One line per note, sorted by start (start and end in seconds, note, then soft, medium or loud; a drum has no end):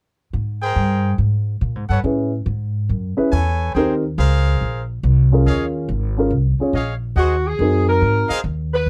0.33 0.75 G#2 medium
0.62 1.17 G#4 medium
0.62 1.16 A#4 medium
0.62 1.17 C5 medium
0.62 1.17 G5 medium
0.76 1.18 G2 medium
1.18 1.60 G#2 medium
1.61 1.75 A#2 medium
1.75 1.89 G#2 medium
1.89 2.03 G2 medium
1.89 2.00 A4 medium
1.89 2.00 B4 medium
1.89 2.00 C#5 medium
1.89 2.00 F#5 medium
2.04 2.45 A2 medium
2.04 2.30 C#4 soft
2.04 2.30 E4 soft
2.04 2.30 G#4 soft
2.04 2.30 B4 soft
2.46 2.88 G#2 medium
2.89 3.16 F#2 medium
3.17 3.31 C#4 medium
3.17 3.31 E4 medium
3.17 3.31 G#4 medium
3.17 3.31 B4 medium
3.17 muted upright bass stroke soft
3.32 3.74 E2 medium
3.32 3.75 A4 medium
3.32 3.75 B4 medium
3.32 3.75 C#5 medium
3.32 3.75 G#5 medium
3.75 4.17 D#2 medium
3.75 4.01 C4 medium
3.75 4.01 D#4 soft
3.75 4.02 G4 medium
3.75 3.94 G#4 medium
3.75 3.94 A#4 medium
3.75 4.02 A#4 medium
3.75 3.94 C5 medium
3.75 3.94 G5 medium
4.18 4.60 C#2 medium
4.18 4.83 G#4 medium
4.18 4.83 A#4 medium
4.18 4.83 C5 medium
4.18 4.84 F5 loud
4.61 5.02 A#1 medium
5.03 5.45 C2 medium
5.32 5.86 C#4 medium
5.32 5.87 F4 medium
5.32 5.87 G#4 medium
5.32 5.87 A#4 medium
5.46 5.88 D#2 medium
5.46 5.66 G#4 medium
5.46 5.65 C#5 medium
5.46 5.65 D#5 medium
5.46 5.65 F5 medium
5.89 6.30 G#1 medium
6.18 6.30 C#4 soft
6.18 6.31 F4 soft
6.18 6.31 G#4 soft
6.18 6.31 A#4 medium
6.31 6.57 C2 medium
6.59 6.73 C#4 soft
6.59 6.74 F4 soft
6.59 6.73 G#4 soft
6.59 6.74 C#5 medium
6.59 muted upright bass stroke soft
6.73 7.15 A#1 medium
6.73 6.93 G#4 medium
6.73 6.93 C#5 medium
6.73 6.93 D#5 medium
6.73 6.93 F5 medium
7.16 7.58 D#2 medium
7.16 7.44 F#4 medium
7.16 7.36 G#4 medium
7.16 7.36 C5 medium
7.16 7.36 D#5 medium
7.16 7.36 F#5 medium
7.47 7.88 G#4 medium
7.59 8.00 F#2 medium
7.59 8.25 C4 soft
7.59 8.25 D#4 soft
7.59 8.25 F#4 soft
7.59 8.25 A#4 medium
7.88 8.41 A#4 medium
8.02 8.28 G#2 medium
8.29 8.40 G#4 medium
8.29 8.39 C5 medium
8.29 8.40 D#5 medium
8.29 8.39 F5 loud
8.29 muted upright bass stroke soft
8.44 8.85 D#2 medium
8.74 8.89 B4 medium
8.86 8.89 C#2 medium